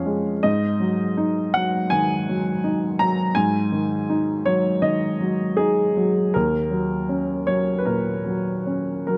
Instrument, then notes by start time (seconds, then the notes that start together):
upright piano
Already playing: F2 F3 G#3 C#4 C#5 F5
0.06 G#3
0.43 G#2 D#5
0.80 F#3
1.17 D#4
1.54 F#3 F#5
1.90 D#3 G#5
2.29 F#3
2.64 D#4
2.99 F#3 A#5
3.35 G#2 G#5
3.72 D#3
4.10 D#4
4.46 F#3 C#5
4.82 D#3 D#5
5.21 F#3
5.57 D#4 G#4
5.97 F#3
6.34 D#2 A#4
6.71 F#3
7.09 C#4
7.47 F#3 C#5
7.79 B4
7.86 A#2 A#4
8.26 F#3
8.67 C#4
9.07 F#3 A#4